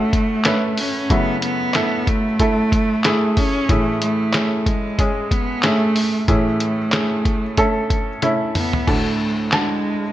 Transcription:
Already playing: A2 E3 A3 C#4 F#4 G#4
0.13 kick, closed hi-hat
0.45 A3 C#4 B4, snare, clap, closed hi-hat
0.77 C#4, open hi-hat
1.10 F#2 C#3 A3 B3 E4 F#4, kick, closed hi-hat
1.42 B3, closed hi-hat
1.74 A3 E4 A4, snare, clap, closed hi-hat
2.07 A3, kick, closed hi-hat
2.40 A3 E4 A4, kick, closed hi-hat
2.72 kick, closed hi-hat
3.04 A3 E4 G#4, snare, clap, closed hi-hat
3.37 C#4, kick, open hi-hat
3.69 A2 E3 A3 C#4 G#4, kick, closed hi-hat
4.02 A3, closed hi-hat
4.33 A3 C#4 G#4, snare, clap, closed hi-hat
4.66 G#3, kick, closed hi-hat
4.99 G#3 C#4 G#4, kick, closed hi-hat
5.31 B3, kick, closed hi-hat
5.63 A3 C#4 G#4, snare, clap, closed hi-hat
5.96 open hi-hat
6.28 A2 E3 A3 C#4 G#4, kick, closed hi-hat
6.60 closed hi-hat
6.92 A3 C#4 G#4, snare, clap, closed hi-hat
7.25 kick, closed hi-hat
7.57 A3 C#4 A4, kick, closed hi-hat
7.90 kick, closed hi-hat
8.22 A3 C#4 E4, closed hi-hat, high tom
8.55 B3, mid tom, open hi-hat
8.73 floor tom
8.87 D2 A2 A3 D4 F#4 A4, kick, crash
9.52 G#3 D4 F#4 A5, snare, clap

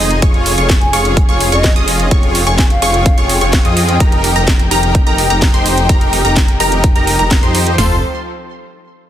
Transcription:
Already playing: F1 G#3 C4 D#4 G#4 D#5 D#6
0.11 closed hi-hat
0.22 F1 F3 C#4 F4 G#4 C#5 C#6, kick, closed hi-hat
0.34 closed hi-hat
0.46 open hi-hat
0.58 F1 F4 G#4 C#5 C#6, closed hi-hat
0.70 kick, snare, closed hi-hat
0.81 G#5, closed hi-hat
0.93 F1 F4 G#4 C#5 C#6, open hi-hat
1.05 closed hi-hat
1.17 kick, closed hi-hat
1.29 F1 F4 G#4 C#5 C#6, closed hi-hat
1.40 open hi-hat
1.52 F1 F4 G#4 C#5 D#5 C#6, closed hi-hat
1.64 kick, snare, closed hi-hat
1.76 F1 F4 G#4 D#5 D#6, closed hi-hat
1.88 open hi-hat
2.00 closed hi-hat
2.11 F1 F4 G#4 C#5 G5 C#6, kick, closed hi-hat
2.23 closed hi-hat
2.35 open hi-hat
2.47 F1 F4 G#4 C#5 G#5 C#6, closed hi-hat
2.58 G#5, kick, snare, closed hi-hat
2.70 F5, closed hi-hat
2.82 F1 F4 G#4 C#5 C#6, open hi-hat
2.94 closed hi-hat
3.06 kick, closed hi-hat
3.18 F1 F4 G#4 C#5 C#6, closed hi-hat
3.29 open hi-hat
3.41 F1 F4 G#4 C#5 C#6, closed hi-hat
3.53 kick, snare, closed hi-hat
3.65 F2 F4 G#4 D#5 D#6, closed hi-hat
3.77 open hi-hat
3.89 closed hi-hat
4.00 F1 D#4 G4 A#4 A#5, kick, closed hi-hat
4.12 closed hi-hat
4.24 open hi-hat
4.36 F1 D#4 G4 A#4 A#5, closed hi-hat
4.48 kick, snare, closed hi-hat
4.59 closed hi-hat
4.71 F1 D#4 G4 A#4 A#5, open hi-hat
4.83 closed hi-hat
4.95 kick, closed hi-hat
5.07 F1 D#4 G4 A#4 A#5, closed hi-hat
5.18 open hi-hat
5.30 F1 D#4 G4 A#4 A#5, closed hi-hat
5.42 kick, snare, closed hi-hat
5.54 F1 D#4 G4 C5 C6, closed hi-hat
5.66 open hi-hat
5.78 closed hi-hat
5.89 F1 D#4 G4 A#4 A#5, kick, closed hi-hat
6.01 closed hi-hat
6.13 open hi-hat
6.25 F1 D#4 G4 A#4 A#5, closed hi-hat
6.37 kick, snare, closed hi-hat
6.48 closed hi-hat
6.60 F1 D#4 G4 A#4 A#5, open hi-hat
6.72 closed hi-hat
6.84 kick, closed hi-hat
6.96 F1 D#4 G4 A#4 A#5, closed hi-hat
7.07 open hi-hat
7.19 F1 D#4 G4 A#4 A#5, closed hi-hat
7.31 kick, snare, closed hi-hat
7.43 F2 D#4 G4 C5 C6, closed hi-hat
7.55 open hi-hat
7.67 closed hi-hat
7.78 F1 F3 C4 F4 A4 C5 C6, snare, floor tom, open hi-hat

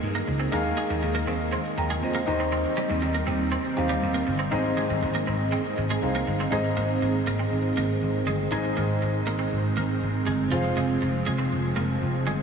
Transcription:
Already playing: D#3 G#3 A#3 D#4 G#4 A#4 D#5 F5 G#5
0.03 G2
0.15 A#3
0.28 C#2, muted clean electric guitar stroke
0.40 C4
0.52 D#2 D#3 A#3 D#4 G#4 A#4 F5
0.77 G#3
0.90 D#2, muted clean electric guitar stroke
1.03 D#2, muted clean electric guitar stroke
1.15 A#3
1.27 D#2 C4
1.53 C4
1.77 D#2 G5 A#5, muted clean electric guitar stroke
1.90 G#3
2.03 F2 C5 D#5
2.15 A#3
2.26 D#2 D#3 G3 C4 D#4 G4 C5 D#5, muted clean electric guitar stroke
2.40 C4
2.52 C4
2.77 G3
2.90 D#2, muted clean electric guitar stroke
3.02 D#2, muted clean electric guitar stroke
3.15 A#3
3.27 D#2 C4
3.52 C4
3.77 D#2 D#4 G4 C5 F5, muted clean electric guitar stroke
3.89 G3
4.03 D#2
4.14 A#3
4.27 G1, muted clean electric guitar stroke
4.39 C4
4.51 G#1 G#2 G#3 C4 D#4 G#4 C5 D#5
4.77 G#3
4.90 G#1, muted clean electric guitar stroke
5.03 G#1, muted clean electric guitar stroke
5.15 A#3
5.27 G#1 C4
5.52 C4
5.78 G#1, muted clean electric guitar stroke
5.90 G#3
6.02 C2 D#4 G#4 C5 F5
6.15 A#3
6.27 G1, muted clean electric guitar stroke
6.40 C4
6.51 G#1 G#2 D#3 G#3 C4 D#4 G#4 C5 D#5
6.64 muted clean electric guitar stroke
6.77 G#1 A#3
7.02 G#1, muted clean electric guitar stroke
7.27 G#1 A#3
7.39 C4
7.52 G#1
7.77 G#1 A#3
8.02 G#1
8.27 G1 G#3
8.51 G#1 G#2 G#3 D#4 G#4 C5 D#5
8.65 muted clean electric guitar stroke
8.77 G#1 A#3
9.02 G#1, muted clean electric guitar stroke
9.27 G#1 A#3
9.39 C4
9.53 G#1
9.77 G#1 A#3
10.02 G#1
10.27 G1 G#3
10.51 F1 F3 G#3 F4 G#4 C5 F5
10.64 muted clean electric guitar stroke
10.77 F1 G#3
11.02 F1, muted clean electric guitar stroke
11.26 F1 G#3
11.39 C4
11.53 F1
11.76 F1 A#3
12.02 F1
12.27 G1 G#3

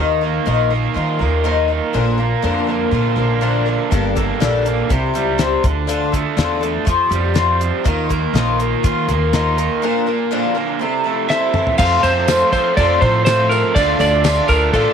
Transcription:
Already playing: D#2 D#3 F3 A#3 D#4
0.00 A#4
0.21 A#3 D#4 A#4
0.46 A#1 D#3 F3 A#3 D#4 A#4
0.70 A#3 D#4 A#4
0.94 D#3 F3 A#3 D#4 F4 A#4
1.19 D#2 A#3 D#4 A#4
1.44 D#3 F3 A#3 D#4 A#4
1.68 D#3 A#3 D#4 A#4
1.93 A#1 A#2 D3 F3 A#3 D4 A#4
2.18 F3 A#3 D4 A#4
2.42 F2 A#2 D3 F3 A#3 D4 A#4
2.67 F3 A#3 D4 A#4
2.91 A#2 F3 A#3 D4 F4 A#4
3.16 A#1 F3 A#3 D4 A#4
3.41 A#2 D3 F3 A#3 D4 A#4
3.66 D3 F3 A#3 D4 A#4
3.91 G1 G2 D3 G3 A#3 D4 A4, kick, closed hi-hat
4.16 G3 A#3 D4 A4, kick, closed hi-hat
4.40 A#1 G2 D3 G3 A#3 D4 A4, snare, closed hi-hat
4.65 G3 A#3 D4 A4, closed hi-hat
4.89 C2 C3 G3 C4 E4 G4, kick, closed hi-hat
5.14 C#2 G3 C4 E4 G4, closed hi-hat
5.38 C3 G3 C4 E4 G4, snare, closed hi-hat
5.63 D2 D3 D4 F4 A4, kick, closed hi-hat
5.87 D3 F3 D4 F4 A4, closed hi-hat
6.12 A3 D4 F4 A4, kick, closed hi-hat
6.37 E2 D3 F3 D4 F4 A4, snare, closed hi-hat
6.61 A3 D4 F4 A4, closed hi-hat
6.85 F2 F3 C4 F4 G4, kick, closed hi-hat
7.10 F2 G3 C4 F4 G4, closed hi-hat
7.34 F3 C4 F4 G4, snare, closed hi-hat
7.59 F3 C4 F4 G4, closed hi-hat
7.84 D#2 D#3 F3 A#3 F4 A#4, kick, closed hi-hat
8.09 A#3 F4 A#4, kick, closed hi-hat
8.33 A#1 D#3 F3 A#3 F4 A#4, snare, closed hi-hat
8.59 A#3 F4 A#4, closed hi-hat
8.83 D#3 F3 A#3 F4 A#4, kick, closed hi-hat
9.08 D#2 A#3 F4 A#4, closed hi-hat
9.33 D#3 F3 A#3 D#4 F4 A#4, snare, closed hi-hat
9.57 D#3 A#3 F4 A#4, closed hi-hat
9.82 A#2 D3 F3 A#3 D4 A#4
10.06 F3 A#3 D4 A#4
10.31 A#2 D3 F3 A#3 D4 A#4
10.55 F3 A#3 D4 A#4
10.79 C3 G3 C4 E4 A4
11.04 A3 C4 E4 A4
11.29 C3 G3 C4 E4 A4 E5, snare
11.54 E3 C4 E4 A4, mid tom
11.67 floor tom
11.78 F2 C3 F3 A3 C4 F4 A4 C5 F5 C6, kick, crash, tambourine
12.03 F2 C4 F4 A4 C5, tambourine, crash
12.27 F3 A3 C4 F4 A4, snare, tambourine, crash
12.41 tambourine
12.52 F3 A3 C4 F4 A4 C5, kick, tambourine, crash
12.77 F2 C3 F3 A3 C4 F4 A4 D5, kick, crash
13.01 A2 F3 A3 C4 F4 A4 C5, kick, crash
13.25 F3 A3 C4 F4 A4 C5, snare, tambourine, crash
13.49 F4 A4 A#4, tambourine, crash
13.53 C4
13.74 D2 D3 F3 A3 D4 F4 A4 D5 D6, kick, tambourine, crash
13.99 D2 D4 F4 A4 D5, tambourine, crash
14.24 D3 F3 A3 D4 F4 A4, snare, tambourine, crash
14.37 tambourine
14.48 D2 A3 D4 F4 A4 A#4, kick, tambourine, crash
14.73 A1 D3 F3 A3 D4 F4 A4, kick, crash

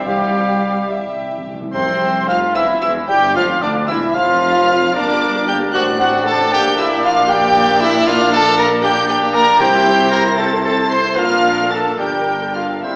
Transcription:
Already playing: C2
0.06 C3 G3 G4 F5
0.88 C3 G3 G4 E5
0.99 C3
1.06 C3
1.14 C3
1.22 C3
1.30 C3
1.38 C3
1.45 C3
1.54 C3
1.61 C3
1.73 C2 F2 C3 C4 C5 C6
2.26 F1 F2 F3 F4 F5 F6
2.54 E1 E2 E3 E4 E5 E6
2.80 E1 E2 E3 E4 E5 E6
3.07 G1 G2 G3 G4 G5 G6
3.34 F1 F2 F3 F4 F5 F6
3.62 D2 D3 D4 D5 D6
3.87 E1 E2 E3 E4 E5 E6
4.14 F1 F2 F3 F4 F5 F6
4.94 G1 G2 A#3 D4 A#4 D5 D6
5.10 D4 G4
5.23 A#3 A#4
5.36 D4 G4
5.46 A#3 G4 A#4 G5 G6
5.62 D4 G4
5.72 A1 A2 C4 F#4 C5 D5 F#5 F#6
5.88 D4 D5
5.99 C4 F#4 C5 F#5 F#6
6.15 D4 D5
6.24 A4 C5 A5 A6
6.28 C4
6.41 D4 D5
6.51 A#1 A#2 A#3 G4 D5 G5 G6
6.68 D4 A#4
6.76 E4 E5 E6
6.80 A#3 D5
6.94 D4 A#4
7.03 A#3 F4 D5 F5 F6
7.19 D4 A#4
7.27 G4 G5 G6
7.32 A#3 D5
7.45 D4 A#4
7.58 A#3 D5
7.70 D4 A#4
7.81 A#3 E4 D5 E5 E6
7.95 D4 A#4
8.06 A#3 D4 F4 D5 F5 F6
8.21 D4 F5
8.31 F4 A4 D5 A5 A6
8.47 D4 F5
8.57 F4 A#4 D5 A#5 A#6
8.71 D4 F5
8.82 A#3 D4 G4 D5 G5 G6
8.96 D4 A#4
9.07 A#3 G4 D5 G5 G6
9.23 D4 A#4
9.32 A#3 A#4 D5 A#5 A#6
9.48 D4 A#4
9.59 C2 C3 C4 E4 G4 C5 G5 G6
9.75 E4 E5
9.87 G4 C5
10.00 E4 E5
10.10 G4 A#4 C5 A#5 A#6
10.27 E4 E5
10.37 A3 C4 E4 A4 C5 A5 A6
10.53 E4 C5
10.64 C4 A4 A5 A6
10.79 E4 C5
10.90 C4 A4 C5 C6 C7
11.05 E4 C5
11.16 A#1 A#2 A#3 D4 F4 A#4 F5 F6
11.59 A3
11.70 A4 A5 A6
11.99 G1 G2 G3 D4 G4 A#4 G5 G6
12.43 A4
12.55 F4 F5 F6
12.83 C2 C3 G3 C4 E4 G4 C5 E5 E6

